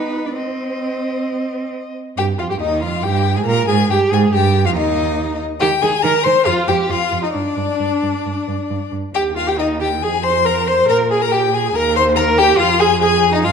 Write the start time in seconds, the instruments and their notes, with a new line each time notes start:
Already playing: viola B3, cello D#4, violin B4 D#5
0.25 cello D4, violin D5
0.35 viola C4, cello C4, violin C5 D#5
2.17 cello G2, violin G4 G5, viola G4
2.38 cello F2, viola F4, violin F4 F5
2.49 cello G2, viola G4, violin G4 G5
2.60 cello D#2, violin D#4 D#5, viola D#4
2.82 cello F2, violin F4 F5, viola F4
3.03 cello G2, violin G4 G5, viola G4
3.35 cello G#2, viola G#4, violin G#4 G#5
3.46 cello A#2, viola A#4, violin A#4 A#5
3.67 cello G#2, viola G#4, violin G#4 G#5
3.89 cello G2, viola G4, violin G4 G5
4.10 cello G#2, violin G#4 G#5, viola G#4
4.32 cello G2, violin G4 G5, viola G4
4.65 cello F2, viola F4, violin F4 F5
4.75 cello D#2, violin D#4 D#5, viola D#4
5.60 cello D#3, viola G4, violin G4 G5
5.81 cello D#3, violin G#4 G#5, viola G#4
6.02 cello D#3, violin A#4 A#5, viola A#4
6.24 cello D#3, violin C5 C6, viola C5
6.45 cello F2, violin F4 F5, viola F4
6.68 cello F2, viola G4, violin G4 G5
6.89 cello F2, violin F4 F5, viola F4
7.12 cello F2
7.23 violin D#4 D#5, viola D#4
7.33 cello G2, viola D4, violin D4 D5
7.57 cello G2
7.79 cello G2
8.03 cello G2
8.25 cello G2
8.48 cello G2
8.70 cello G2
8.92 cello G2
9.14 cello D#2, violin G4 G5, viola G4
9.36 viola F4, violin F4 F5
9.47 violin G4 G5, viola G4
9.58 violin D#4 D#5, viola D#4
9.80 violin G4 G5, viola G4
10.02 cello F2, violin G#4 G#5, viola G#4
10.23 viola C5, violin C5 C6
10.45 viola A#4, violin A#4 A#5
10.68 viola C5, violin C5 C6
10.89 cello A#2, viola A#4, violin A#4 A#5
11.11 violin G#4 G#5, viola G#4
11.21 viola A#4, violin A#4 A#5
11.32 violin G4 G5, viola G4
11.52 violin G#4 G#5, viola G#4
11.74 cello D#2, violin A#4 A#5, viola A#4
11.95 violin C5 C6, viola C5
12.16 violin A#4 A#5, viola A#4
12.38 violin G4 G5, viola G4
12.58 cello F2, violin F4 F5, viola F4
12.79 violin G#4 G#5, viola G#4
13.00 violin G#4 G#5, viola G#4
13.33 violin D#4 D#5, viola D#4
13.43 cello G2, viola F4, violin F4 F5